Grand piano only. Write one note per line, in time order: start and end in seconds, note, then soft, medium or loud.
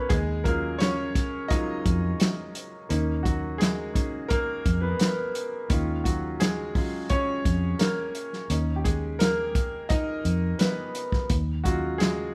0.00 0.11 G#3 medium
0.00 0.13 A#3 medium
0.00 0.12 B3 medium
0.00 0.13 C#4 medium
0.00 0.09 G#4 medium
0.00 0.13 A#4 medium
0.00 0.11 B4 medium
0.00 0.12 C#5 medium
0.09 0.43 G#3 medium
0.09 0.46 G#4 medium
0.44 0.91 F#3 soft
0.44 0.92 G#3 soft
0.44 0.78 A#3 medium
0.44 0.79 C#4 soft
0.44 0.92 F4 soft
0.44 0.81 A#4 medium
0.79 1.47 C#4 medium
0.79 1.52 C#5 medium
1.48 1.81 F#3 medium
1.48 1.82 G#3 soft
1.48 1.82 C#4 soft
1.48 2.17 D#4 medium
1.48 1.82 F4 medium
1.48 2.15 D#5 medium
2.89 3.91 A#3 medium
2.89 3.91 C#4 soft
2.89 3.92 D#4 medium
3.23 3.33 F#3 soft
3.23 3.31 F#4 medium
3.58 4.26 G#3 medium
3.58 4.25 G#4 medium
3.93 4.26 A#3 soft
3.93 4.26 C#4 soft
3.93 4.27 D#4 soft
4.28 4.79 A#3 medium
4.28 4.84 A#4 medium
4.81 5.32 B3 medium
4.81 5.31 B4 medium
5.69 8.46 D#3 medium
5.69 6.40 G#3 soft
5.69 6.74 C#4 soft
5.69 6.74 F4 medium
6.04 6.38 F#3 soft
6.04 6.41 F#4 medium
6.40 6.74 G#3 medium
6.40 7.12 G#4 medium
6.75 7.07 F#3 soft
6.75 7.07 G#3 soft
6.75 7.07 C#4 soft
6.75 7.07 F4 soft
7.10 7.77 C#4 medium
7.10 7.82 C#5 loud
7.79 8.29 A#3 medium
7.79 8.29 A#4 medium
8.50 11.26 C#4 soft
8.50 9.89 D#4 medium
8.76 8.84 G4 soft
8.84 9.18 G#3 soft
8.84 9.21 G#4 medium
9.19 9.87 A#3 medium
9.19 9.92 A#4 medium
9.89 10.57 D#4 medium
9.89 10.62 D#5 loud
10.59 11.10 B3 medium
10.59 11.08 B4 medium
11.64 11.98 F#3 medium
11.64 12.00 G#3 soft
11.64 12.12 C#4 soft
11.64 12.12 F4 medium
11.64 12.01 F#4 medium
11.98 12.34 G#3 medium
11.98 12.34 G#4 medium